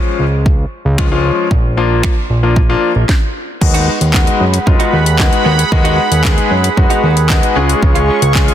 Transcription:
Already playing: grand piano F3 G#3 C#4 F4
0.19 analog synth bass C#2
0.46 kick
0.85 analog synth bass C#2
0.98 grand piano F3 G#3 C#4 F4, finger snap, kick
1.11 grand piano F3 G#3 C#4 F4
1.51 analog synth bass A#1, kick
1.77 grand piano F3 A#3 D4 F4
2.03 finger snap, kick
2.30 analog synth bass A#1
2.43 grand piano F3 A#3 D4 F4
2.56 kick
2.69 grand piano F3 A#3 D4 F4
2.96 analog synth bass A#1
3.09 kick, snare
3.61 analog synth bass D#2, grand piano G#3 B3 D#4 F#4, analog synth pad G#4 F#5 B5, muted clean electric guitar stroke, kick, crash
3.74 clean electric guitar B3 D#4 F#4, closed hi-hat
3.87 clean electric guitar B3 D#4 F#4
4.01 analog synth bass D#2, muted clean electric guitar stroke, closed hi-hat
4.14 grand piano G#3 B3 D#4 F#4, muted clean electric guitar stroke, kick, snare, clap
4.27 muted clean electric guitar stroke, closed hi-hat
4.40 analog synth bass F#2
4.53 muted clean electric guitar stroke, closed hi-hat
4.66 analog synth bass F#2, grand piano G#3 B3 D#4 F4, muted clean electric guitar stroke, kick
4.79 clean electric guitar B3 D#4 F#4, closed hi-hat
4.93 analog synth bass D#2, clean electric guitar B3 D#4 F#4
5.06 muted clean electric guitar stroke, closed hi-hat
5.19 grand piano G#3 B3 D#4 F#4, kick, snare, clap
5.32 muted clean electric guitar stroke, closed hi-hat
5.45 analog synth bass D#2, clean electric guitar B3 D#4 F#4
5.58 muted clean electric guitar stroke, closed hi-hat
5.72 analog synth bass D#2, grand piano G#3 B3 D#4 F#4, muted clean electric guitar stroke, kick
5.85 clean electric guitar B3 D#4 F#4, closed hi-hat
5.98 clean electric guitar B3 D#4 F#4
6.11 analog synth bass D#2, muted clean electric guitar stroke, closed hi-hat
6.24 grand piano G#3 B3 D#4 G#4, muted clean electric guitar stroke, kick, snare, clap
6.37 muted clean electric guitar stroke, closed hi-hat
6.51 analog synth bass F#2
6.64 muted clean electric guitar stroke, closed hi-hat
6.77 analog synth bass F#2, grand piano G#3 B3 D#4 F#4, muted clean electric guitar stroke, kick
6.90 clean electric guitar B3 D#4 F#4, closed hi-hat
7.03 analog synth bass D#2, clean electric guitar B3 D#4 F#4
7.16 muted clean electric guitar stroke, closed hi-hat
7.30 grand piano G#3 B3 D#4 F#4, kick, snare, clap
7.43 muted clean electric guitar stroke, closed hi-hat
7.56 analog synth bass C#2, clean electric guitar G#3 C#4 F4, grand piano G#3 C#4 F4 G#4, analog synth pad F5 C#6
7.69 muted clean electric guitar stroke, closed hi-hat
7.82 analog synth bass C#2, muted clean electric guitar stroke, kick
7.95 clean electric guitar G#3 C#4 F4, closed hi-hat
8.08 clean electric guitar G#3 C#4 F4
8.22 analog synth bass C#2, muted clean electric guitar stroke, closed hi-hat
8.35 grand piano G#3 C#4 F4 G#4, muted clean electric guitar stroke, kick, snare, clap
8.48 muted clean electric guitar stroke, closed hi-hat

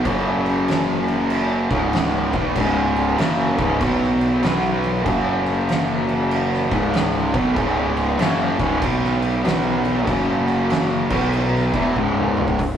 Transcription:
0.05 picked electric bass F#1, distorted electric guitar F#2 C#3 F#3, kick, crash
0.46 crash
0.68 snare, crash
1.08 crash
1.30 crash
1.70 picked electric bass C#1, distorted electric guitar C#2 G#2 C#3, kick, crash
1.93 snare, crash
2.33 picked electric bass B1, distorted electric guitar B2 F#3 B3, kick, crash
2.55 picked electric bass C#1, distorted electric guitar C#2 G#2 C#3, kick, crash
2.96 crash
3.17 picked electric bass F#1, distorted electric guitar F#2 C#3 F#3, snare, crash
3.58 picked electric bass C#1, distorted electric guitar C#2 G#2 C#3, kick, crash
3.80 picked electric bass B1, distorted electric guitar B2 F#3 B3, kick, crash
4.03 snare
4.21 crash
4.43 picked electric bass B1, distorted electric guitar B2 F#3 B3, snare, crash
4.84 crash
5.05 picked electric bass F#1, distorted electric guitar F#2 C#3 F#3, kick, crash
5.46 crash
5.69 snare, crash
6.09 crash
6.31 crash
6.53 snare
6.71 picked electric bass C#1, distorted electric guitar C#2 G#2 C#3, kick, crash
6.94 snare, crash
7.34 picked electric bass B1, distorted electric guitar B2 F#3 B3, kick, crash
7.56 picked electric bass C#1, distorted electric guitar C#2 G#2 C#3, kick, crash
7.97 crash
8.18 picked electric bass F#1, distorted electric guitar F#2 C#3 F#3, snare, crash
8.59 picked electric bass C#1, distorted electric guitar C#2 G#2 C#3, kick, crash
8.81 picked electric bass B1, distorted electric guitar B2 F#3 B3, kick, crash
9.04 snare
9.22 crash
9.44 picked electric bass B1, distorted electric guitar B2 F#3 B3, snare, crash
9.85 crash
10.07 picked electric bass F#1, distorted electric guitar F#2 C#3 F#3, kick, crash
10.48 crash
10.70 snare, crash
11.10 picked electric bass B1, distorted electric guitar B2 F#3 B3, kick, crash
11.33 crash
11.56 snare
11.73 picked electric bass E1, distorted electric guitar E2 B2 E3, kick, crash
11.96 picked electric bass C#1, distorted electric guitar C#2 G#2 C#3, kick
12.17 mid tom
12.37 mid tom
12.48 kick
12.59 picked electric bass C#1, kick, open hi-hat

